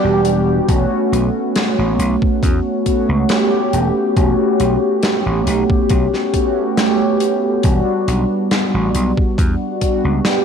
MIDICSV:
0, 0, Header, 1, 4, 480
1, 0, Start_track
1, 0, Tempo, 869565
1, 379, Time_signature, 4, 2, 24, 8
1, 5766, End_track
2, 0, Start_track
2, 0, Title_t, "Analog polysynth"
2, 0, Program_c, 0, 90
2, 0, Control_c, 0, 64, 127
2, 0, Note_on_c, 0, 55, 87
2, 0, Note_on_c, 0, 59, 80
2, 0, Note_on_c, 0, 62, 83
2, 0, Note_on_c, 0, 66, 86
2, 0, Note_on_c, 0, 67, 99
2, 349, Note_off_c, 0, 55, 0
2, 350, Note_off_c, 0, 59, 0
2, 351, Note_off_c, 0, 62, 0
2, 353, Note_off_c, 0, 67, 0
2, 373, Note_on_c, 0, 57, 85
2, 378, Note_on_c, 0, 59, 77
2, 383, Note_on_c, 0, 61, 80
2, 385, Control_c, 0, 64, 0
2, 387, Note_off_c, 0, 66, 0
2, 390, Note_on_c, 0, 66, 90
2, 490, Control_c, 0, 64, 127
2, 1548, Note_off_c, 0, 57, 0
2, 1551, Note_off_c, 0, 59, 0
2, 1554, Note_off_c, 0, 61, 0
2, 1557, Note_off_c, 0, 66, 0
2, 1578, Note_on_c, 0, 57, 78
2, 1580, Note_on_c, 0, 59, 73
2, 1584, Note_on_c, 0, 61, 73
2, 1586, Note_on_c, 0, 66, 88
2, 1791, Note_off_c, 0, 57, 0
2, 1792, Note_off_c, 0, 59, 0
2, 1794, Note_off_c, 0, 61, 0
2, 1795, Note_off_c, 0, 66, 0
2, 1815, Note_on_c, 0, 57, 85
2, 1819, Note_on_c, 0, 59, 83
2, 1821, Note_on_c, 0, 61, 81
2, 1824, Note_on_c, 0, 67, 98
2, 2269, Note_off_c, 0, 57, 0
2, 2271, Note_off_c, 0, 59, 0
2, 2272, Note_off_c, 0, 61, 0
2, 2274, Note_off_c, 0, 67, 0
2, 2291, Note_on_c, 0, 57, 82
2, 2296, Note_on_c, 0, 59, 77
2, 2302, Note_on_c, 0, 61, 79
2, 2307, Note_on_c, 0, 66, 92
2, 3467, Note_off_c, 0, 57, 0
2, 3470, Note_off_c, 0, 59, 0
2, 3473, Note_off_c, 0, 61, 0
2, 3475, Note_off_c, 0, 66, 0
2, 3493, Note_on_c, 0, 57, 80
2, 3496, Note_on_c, 0, 59, 74
2, 3499, Note_on_c, 0, 61, 75
2, 3502, Note_on_c, 0, 66, 89
2, 3708, Note_off_c, 0, 57, 0
2, 3710, Note_off_c, 0, 59, 0
2, 3711, Note_off_c, 0, 61, 0
2, 3713, Note_off_c, 0, 66, 0
2, 3735, Note_on_c, 0, 57, 91
2, 3737, Note_on_c, 0, 59, 84
2, 3741, Note_on_c, 0, 61, 82
2, 3743, Note_on_c, 0, 67, 96
2, 4189, Note_off_c, 0, 57, 0
2, 4191, Note_off_c, 0, 59, 0
2, 4192, Note_off_c, 0, 61, 0
2, 4193, Note_off_c, 0, 67, 0
2, 4211, Note_on_c, 0, 55, 82
2, 4217, Note_on_c, 0, 59, 75
2, 4223, Note_on_c, 0, 62, 75
2, 4226, Control_c, 0, 64, 0
2, 4229, Note_on_c, 0, 66, 95
2, 4335, Control_c, 0, 64, 127
2, 5387, Note_off_c, 0, 55, 0
2, 5391, Note_off_c, 0, 59, 0
2, 5393, Note_off_c, 0, 62, 0
2, 5396, Note_off_c, 0, 66, 0
2, 5414, Note_on_c, 0, 55, 82
2, 5418, Note_on_c, 0, 59, 72
2, 5420, Note_on_c, 0, 62, 76
2, 5423, Note_on_c, 0, 66, 92
2, 5629, Note_off_c, 0, 55, 0
2, 5631, Note_off_c, 0, 59, 0
2, 5632, Note_off_c, 0, 62, 0
2, 5633, Note_off_c, 0, 66, 0
2, 5654, Note_on_c, 0, 55, 91
2, 5657, Note_on_c, 0, 59, 81
2, 5660, Note_on_c, 0, 62, 78
2, 5662, Note_on_c, 0, 67, 98
2, 5766, Note_off_c, 0, 55, 0
2, 5766, Note_off_c, 0, 59, 0
2, 5766, Note_off_c, 0, 62, 0
2, 5766, Note_off_c, 0, 67, 0
2, 5766, End_track
3, 0, Start_track
3, 0, Title_t, "Slap bass"
3, 0, Program_c, 1, 36
3, 23, Note_on_c, 1, 28, 88
3, 324, Note_off_c, 1, 28, 0
3, 379, Note_on_c, 1, 28, 87
3, 467, Note_off_c, 1, 28, 0
3, 620, Note_on_c, 1, 35, 78
3, 708, Note_off_c, 1, 35, 0
3, 985, Note_on_c, 1, 33, 81
3, 1065, Note_off_c, 1, 33, 0
3, 1098, Note_on_c, 1, 35, 86
3, 1187, Note_off_c, 1, 35, 0
3, 1340, Note_on_c, 1, 40, 73
3, 1428, Note_off_c, 1, 40, 0
3, 1705, Note_on_c, 1, 37, 83
3, 1785, Note_off_c, 1, 37, 0
3, 2060, Note_on_c, 1, 28, 86
3, 2148, Note_off_c, 1, 28, 0
3, 2299, Note_on_c, 1, 28, 95
3, 2387, Note_off_c, 1, 28, 0
3, 2539, Note_on_c, 1, 35, 79
3, 2627, Note_off_c, 1, 35, 0
3, 2904, Note_on_c, 1, 33, 78
3, 2984, Note_off_c, 1, 33, 0
3, 3018, Note_on_c, 1, 35, 89
3, 3107, Note_off_c, 1, 35, 0
3, 3258, Note_on_c, 1, 35, 84
3, 3347, Note_off_c, 1, 35, 0
3, 4217, Note_on_c, 1, 28, 90
3, 4306, Note_off_c, 1, 28, 0
3, 4459, Note_on_c, 1, 35, 78
3, 4547, Note_off_c, 1, 35, 0
3, 4825, Note_on_c, 1, 33, 80
3, 4905, Note_off_c, 1, 33, 0
3, 4940, Note_on_c, 1, 35, 89
3, 5028, Note_off_c, 1, 35, 0
3, 5177, Note_on_c, 1, 40, 77
3, 5266, Note_off_c, 1, 40, 0
3, 5545, Note_on_c, 1, 37, 77
3, 5625, Note_off_c, 1, 37, 0
3, 5766, End_track
4, 0, Start_track
4, 0, Title_t, "Drums"
4, 137, Note_on_c, 9, 42, 73
4, 192, Note_off_c, 9, 42, 0
4, 379, Note_on_c, 9, 36, 120
4, 379, Note_on_c, 9, 42, 85
4, 434, Note_off_c, 9, 36, 0
4, 435, Note_off_c, 9, 42, 0
4, 626, Note_on_c, 9, 42, 65
4, 681, Note_off_c, 9, 42, 0
4, 859, Note_on_c, 9, 42, 82
4, 861, Note_on_c, 9, 38, 123
4, 914, Note_off_c, 9, 42, 0
4, 917, Note_off_c, 9, 38, 0
4, 1102, Note_on_c, 9, 42, 65
4, 1157, Note_off_c, 9, 42, 0
4, 1225, Note_on_c, 9, 36, 103
4, 1281, Note_off_c, 9, 36, 0
4, 1339, Note_on_c, 9, 36, 116
4, 1342, Note_on_c, 9, 42, 81
4, 1395, Note_off_c, 9, 36, 0
4, 1398, Note_off_c, 9, 42, 0
4, 1579, Note_on_c, 9, 36, 58
4, 1579, Note_on_c, 9, 42, 68
4, 1634, Note_off_c, 9, 42, 0
4, 1635, Note_off_c, 9, 36, 0
4, 1817, Note_on_c, 9, 42, 90
4, 1821, Note_on_c, 9, 38, 126
4, 1872, Note_off_c, 9, 42, 0
4, 1876, Note_off_c, 9, 38, 0
4, 2061, Note_on_c, 9, 42, 67
4, 2116, Note_off_c, 9, 42, 0
4, 2300, Note_on_c, 9, 36, 110
4, 2301, Note_on_c, 9, 42, 75
4, 2355, Note_off_c, 9, 36, 0
4, 2356, Note_off_c, 9, 42, 0
4, 2538, Note_on_c, 9, 42, 63
4, 2593, Note_off_c, 9, 42, 0
4, 2775, Note_on_c, 9, 42, 76
4, 2778, Note_on_c, 9, 38, 121
4, 2830, Note_off_c, 9, 42, 0
4, 2833, Note_off_c, 9, 38, 0
4, 3019, Note_on_c, 9, 42, 74
4, 3074, Note_off_c, 9, 42, 0
4, 3144, Note_on_c, 9, 36, 103
4, 3200, Note_off_c, 9, 36, 0
4, 3254, Note_on_c, 9, 42, 81
4, 3258, Note_on_c, 9, 36, 113
4, 3309, Note_off_c, 9, 42, 0
4, 3314, Note_off_c, 9, 36, 0
4, 3387, Note_on_c, 9, 38, 31
4, 3442, Note_off_c, 9, 38, 0
4, 3497, Note_on_c, 9, 42, 74
4, 3498, Note_on_c, 9, 36, 61
4, 3553, Note_off_c, 9, 36, 0
4, 3553, Note_off_c, 9, 42, 0
4, 3740, Note_on_c, 9, 38, 127
4, 3741, Note_on_c, 9, 42, 93
4, 3795, Note_off_c, 9, 38, 0
4, 3796, Note_off_c, 9, 42, 0
4, 3976, Note_on_c, 9, 42, 78
4, 4032, Note_off_c, 9, 42, 0
4, 4214, Note_on_c, 9, 42, 83
4, 4218, Note_on_c, 9, 36, 114
4, 4269, Note_off_c, 9, 42, 0
4, 4273, Note_off_c, 9, 36, 0
4, 4460, Note_on_c, 9, 42, 72
4, 4515, Note_off_c, 9, 42, 0
4, 4698, Note_on_c, 9, 42, 78
4, 4700, Note_on_c, 9, 38, 106
4, 4754, Note_off_c, 9, 42, 0
4, 4755, Note_off_c, 9, 38, 0
4, 4938, Note_on_c, 9, 42, 69
4, 4993, Note_off_c, 9, 42, 0
4, 5064, Note_on_c, 9, 36, 96
4, 5120, Note_off_c, 9, 36, 0
4, 5178, Note_on_c, 9, 36, 107
4, 5182, Note_on_c, 9, 42, 88
4, 5233, Note_off_c, 9, 36, 0
4, 5237, Note_off_c, 9, 42, 0
4, 5418, Note_on_c, 9, 36, 58
4, 5418, Note_on_c, 9, 42, 79
4, 5473, Note_off_c, 9, 36, 0
4, 5473, Note_off_c, 9, 42, 0
4, 5656, Note_on_c, 9, 38, 120
4, 5659, Note_on_c, 9, 42, 85
4, 5712, Note_off_c, 9, 38, 0
4, 5714, Note_off_c, 9, 42, 0
4, 5766, End_track
0, 0, End_of_file